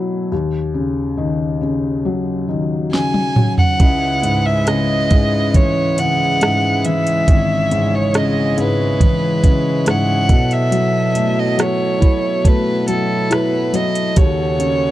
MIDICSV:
0, 0, Header, 1, 5, 480
1, 0, Start_track
1, 0, Key_signature, 4, "minor"
1, 0, Tempo, 870827
1, 172, Time_signature, 4, 2, 24, 8
1, 4013, Tempo, 862069
1, 8262, End_track
2, 0, Start_track
2, 0, Title_t, "Violin"
2, 0, Program_c, 0, 40
2, 1616, Note_on_c, 0, 80, 75
2, 1954, Note_off_c, 0, 80, 0
2, 1976, Note_on_c, 0, 78, 76
2, 2456, Note_on_c, 0, 76, 74
2, 2465, Note_off_c, 0, 78, 0
2, 2575, Note_on_c, 0, 75, 73
2, 2584, Note_off_c, 0, 76, 0
2, 3060, Note_on_c, 0, 73, 83
2, 3068, Note_off_c, 0, 75, 0
2, 3301, Note_on_c, 0, 78, 81
2, 3309, Note_off_c, 0, 73, 0
2, 3777, Note_on_c, 0, 76, 83
2, 3786, Note_off_c, 0, 78, 0
2, 4386, Note_on_c, 0, 73, 72
2, 4395, Note_off_c, 0, 76, 0
2, 4507, Note_on_c, 0, 75, 67
2, 4516, Note_off_c, 0, 73, 0
2, 4741, Note_off_c, 0, 75, 0
2, 4748, Note_on_c, 0, 71, 76
2, 5471, Note_on_c, 0, 78, 76
2, 5479, Note_off_c, 0, 71, 0
2, 5821, Note_on_c, 0, 76, 77
2, 5829, Note_off_c, 0, 78, 0
2, 6302, Note_on_c, 0, 75, 73
2, 6310, Note_off_c, 0, 76, 0
2, 6425, Note_on_c, 0, 73, 72
2, 6434, Note_off_c, 0, 75, 0
2, 6906, Note_on_c, 0, 71, 76
2, 6914, Note_off_c, 0, 73, 0
2, 7136, Note_off_c, 0, 71, 0
2, 7139, Note_on_c, 0, 69, 70
2, 7380, Note_on_c, 0, 71, 73
2, 7389, Note_off_c, 0, 69, 0
2, 7617, Note_on_c, 0, 75, 68
2, 7625, Note_off_c, 0, 71, 0
2, 7854, Note_on_c, 0, 73, 72
2, 7862, Note_off_c, 0, 75, 0
2, 8262, Note_off_c, 0, 73, 0
2, 8262, End_track
3, 0, Start_track
3, 0, Title_t, "Harmonium"
3, 0, Program_c, 1, 20
3, 2091, Note_on_c, 1, 64, 54
3, 2091, Note_on_c, 1, 71, 63
3, 2092, Note_on_c, 1, 49, 62
3, 2092, Note_on_c, 1, 56, 51
3, 3991, Note_off_c, 1, 71, 0
3, 4016, Note_on_c, 1, 73, 65
3, 5669, Note_off_c, 1, 49, 0
3, 5669, Note_off_c, 1, 56, 0
3, 5678, Note_off_c, 1, 73, 0
3, 5692, Note_on_c, 1, 54, 57
3, 5695, Note_on_c, 1, 69, 65
3, 5696, Note_on_c, 1, 47, 58
3, 7825, Note_off_c, 1, 64, 0
3, 7827, Note_off_c, 1, 54, 0
3, 7829, Note_off_c, 1, 47, 0
3, 7843, Note_on_c, 1, 49, 51
3, 7846, Note_on_c, 1, 66, 56
3, 7849, Note_on_c, 1, 39, 65
3, 8262, Note_off_c, 1, 39, 0
3, 8262, Note_off_c, 1, 49, 0
3, 8262, Note_off_c, 1, 66, 0
3, 8262, Note_off_c, 1, 69, 0
3, 8262, End_track
4, 0, Start_track
4, 0, Title_t, "Felt piano"
4, 0, Program_c, 2, 0
4, 0, Control_c, 2, 64, 127
4, 0, Note_on_c, 2, 54, 54
4, 0, Note_on_c, 2, 57, 46
4, 0, Note_on_c, 2, 64, 45
4, 151, Note_off_c, 2, 57, 0
4, 160, Note_off_c, 2, 64, 0
4, 167, Note_off_c, 2, 54, 0
4, 175, Note_on_c, 2, 39, 55
4, 179, Control_c, 2, 64, 0
4, 270, Control_c, 2, 64, 127
4, 410, Note_on_c, 2, 49, 44
4, 648, Note_on_c, 2, 51, 42
4, 881, Note_off_c, 2, 49, 0
4, 889, Note_on_c, 2, 49, 44
4, 1131, Note_on_c, 2, 54, 48
4, 1361, Note_off_c, 2, 51, 0
4, 1369, Note_on_c, 2, 51, 41
4, 1604, Note_off_c, 2, 49, 0
4, 1612, Note_on_c, 2, 49, 41
4, 1842, Note_off_c, 2, 54, 0
4, 1850, Note_on_c, 2, 54, 46
4, 2071, Note_off_c, 2, 51, 0
4, 2074, Note_off_c, 2, 39, 0
4, 2080, Note_off_c, 2, 49, 0
4, 2086, Note_off_c, 2, 54, 0
4, 2094, Note_on_c, 2, 37, 54
4, 2102, Control_c, 2, 64, 0
4, 2196, Control_c, 2, 64, 127
4, 2332, Note_on_c, 2, 44, 41
4, 2574, Note_on_c, 2, 49, 43
4, 2807, Note_off_c, 2, 44, 0
4, 2816, Note_on_c, 2, 44, 43
4, 3059, Note_on_c, 2, 52, 43
4, 3294, Note_off_c, 2, 49, 0
4, 3302, Note_on_c, 2, 49, 44
4, 3527, Note_off_c, 2, 44, 0
4, 3535, Note_on_c, 2, 44, 39
4, 3771, Note_off_c, 2, 52, 0
4, 3779, Note_on_c, 2, 52, 43
4, 3990, Note_off_c, 2, 37, 0
4, 4015, Note_on_c, 2, 32, 55
4, 4234, Note_off_c, 2, 49, 0
4, 4247, Note_off_c, 2, 44, 0
4, 4256, Note_on_c, 2, 44, 43
4, 4495, Note_on_c, 2, 49, 41
4, 4715, Note_off_c, 2, 52, 0
4, 4727, Note_off_c, 2, 44, 0
4, 4735, Note_on_c, 2, 44, 48
4, 4972, Note_on_c, 2, 52, 46
4, 5206, Note_off_c, 2, 49, 0
4, 5214, Note_on_c, 2, 49, 44
4, 5444, Note_off_c, 2, 44, 0
4, 5453, Note_on_c, 2, 44, 45
4, 5670, Note_off_c, 2, 52, 0
4, 5672, Note_off_c, 2, 32, 0
4, 5679, Note_off_c, 2, 49, 0
4, 5685, Note_off_c, 2, 44, 0
4, 5686, Note_on_c, 2, 47, 57
4, 5701, Control_c, 2, 64, 0
4, 5793, Control_c, 2, 64, 127
4, 5925, Note_on_c, 2, 54, 48
4, 6166, Note_on_c, 2, 57, 46
4, 6396, Note_off_c, 2, 54, 0
4, 6404, Note_on_c, 2, 54, 38
4, 6642, Note_on_c, 2, 64, 49
4, 6881, Note_off_c, 2, 57, 0
4, 6889, Note_on_c, 2, 57, 47
4, 7123, Note_off_c, 2, 54, 0
4, 7131, Note_on_c, 2, 54, 44
4, 7358, Note_off_c, 2, 64, 0
4, 7366, Note_on_c, 2, 64, 46
4, 7584, Note_off_c, 2, 47, 0
4, 7595, Note_off_c, 2, 54, 0
4, 7604, Note_on_c, 2, 54, 50
4, 7825, Note_off_c, 2, 57, 0
4, 7832, Note_off_c, 2, 64, 0
4, 7838, Note_off_c, 2, 54, 0
4, 7845, Note_on_c, 2, 39, 54
4, 7856, Control_c, 2, 64, 0
4, 7968, Control_c, 2, 64, 127
4, 8082, Note_on_c, 2, 49, 45
4, 8262, Note_off_c, 2, 39, 0
4, 8262, Note_off_c, 2, 49, 0
4, 8262, End_track
5, 0, Start_track
5, 0, Title_t, "Drums"
5, 1621, Note_on_c, 9, 38, 45
5, 1676, Note_off_c, 9, 38, 0
5, 1732, Note_on_c, 9, 48, 55
5, 1787, Note_off_c, 9, 48, 0
5, 1852, Note_on_c, 9, 45, 69
5, 1907, Note_off_c, 9, 45, 0
5, 1972, Note_on_c, 9, 43, 66
5, 2027, Note_off_c, 9, 43, 0
5, 2093, Note_on_c, 9, 42, 75
5, 2095, Note_on_c, 9, 36, 95
5, 2149, Note_off_c, 9, 42, 0
5, 2150, Note_off_c, 9, 36, 0
5, 2334, Note_on_c, 9, 42, 57
5, 2389, Note_off_c, 9, 42, 0
5, 2573, Note_on_c, 9, 42, 68
5, 2578, Note_on_c, 9, 37, 77
5, 2628, Note_off_c, 9, 42, 0
5, 2633, Note_off_c, 9, 37, 0
5, 2814, Note_on_c, 9, 42, 52
5, 2817, Note_on_c, 9, 36, 70
5, 2870, Note_off_c, 9, 42, 0
5, 2872, Note_off_c, 9, 36, 0
5, 3056, Note_on_c, 9, 36, 73
5, 3056, Note_on_c, 9, 42, 70
5, 3111, Note_off_c, 9, 36, 0
5, 3111, Note_off_c, 9, 42, 0
5, 3295, Note_on_c, 9, 42, 62
5, 3350, Note_off_c, 9, 42, 0
5, 3535, Note_on_c, 9, 42, 63
5, 3543, Note_on_c, 9, 37, 96
5, 3590, Note_off_c, 9, 42, 0
5, 3598, Note_off_c, 9, 37, 0
5, 3773, Note_on_c, 9, 42, 67
5, 3828, Note_off_c, 9, 42, 0
5, 3895, Note_on_c, 9, 42, 48
5, 3950, Note_off_c, 9, 42, 0
5, 4012, Note_on_c, 9, 36, 93
5, 4012, Note_on_c, 9, 42, 75
5, 4068, Note_off_c, 9, 36, 0
5, 4068, Note_off_c, 9, 42, 0
5, 4254, Note_on_c, 9, 42, 54
5, 4310, Note_off_c, 9, 42, 0
5, 4493, Note_on_c, 9, 42, 62
5, 4497, Note_on_c, 9, 37, 84
5, 4548, Note_off_c, 9, 42, 0
5, 4553, Note_off_c, 9, 37, 0
5, 4735, Note_on_c, 9, 42, 48
5, 4791, Note_off_c, 9, 42, 0
5, 4973, Note_on_c, 9, 36, 73
5, 4976, Note_on_c, 9, 42, 80
5, 5029, Note_off_c, 9, 36, 0
5, 5031, Note_off_c, 9, 42, 0
5, 5213, Note_on_c, 9, 36, 73
5, 5213, Note_on_c, 9, 42, 66
5, 5269, Note_off_c, 9, 36, 0
5, 5269, Note_off_c, 9, 42, 0
5, 5450, Note_on_c, 9, 42, 70
5, 5459, Note_on_c, 9, 37, 84
5, 5506, Note_off_c, 9, 42, 0
5, 5515, Note_off_c, 9, 37, 0
5, 5690, Note_on_c, 9, 42, 63
5, 5691, Note_on_c, 9, 36, 82
5, 5745, Note_off_c, 9, 42, 0
5, 5746, Note_off_c, 9, 36, 0
5, 5811, Note_on_c, 9, 42, 46
5, 5866, Note_off_c, 9, 42, 0
5, 5929, Note_on_c, 9, 42, 71
5, 5985, Note_off_c, 9, 42, 0
5, 6168, Note_on_c, 9, 42, 57
5, 6224, Note_off_c, 9, 42, 0
5, 6412, Note_on_c, 9, 42, 67
5, 6417, Note_on_c, 9, 37, 85
5, 6467, Note_off_c, 9, 42, 0
5, 6472, Note_off_c, 9, 37, 0
5, 6653, Note_on_c, 9, 36, 70
5, 6653, Note_on_c, 9, 42, 50
5, 6708, Note_off_c, 9, 36, 0
5, 6709, Note_off_c, 9, 42, 0
5, 6890, Note_on_c, 9, 36, 78
5, 6892, Note_on_c, 9, 42, 76
5, 6946, Note_off_c, 9, 36, 0
5, 6948, Note_off_c, 9, 42, 0
5, 7130, Note_on_c, 9, 42, 66
5, 7185, Note_off_c, 9, 42, 0
5, 7370, Note_on_c, 9, 42, 68
5, 7378, Note_on_c, 9, 37, 91
5, 7425, Note_off_c, 9, 42, 0
5, 7434, Note_off_c, 9, 37, 0
5, 7608, Note_on_c, 9, 42, 70
5, 7664, Note_off_c, 9, 42, 0
5, 7728, Note_on_c, 9, 42, 49
5, 7784, Note_off_c, 9, 42, 0
5, 7845, Note_on_c, 9, 42, 72
5, 7848, Note_on_c, 9, 36, 87
5, 7901, Note_off_c, 9, 42, 0
5, 7904, Note_off_c, 9, 36, 0
5, 8088, Note_on_c, 9, 42, 62
5, 8143, Note_off_c, 9, 42, 0
5, 8262, End_track
0, 0, End_of_file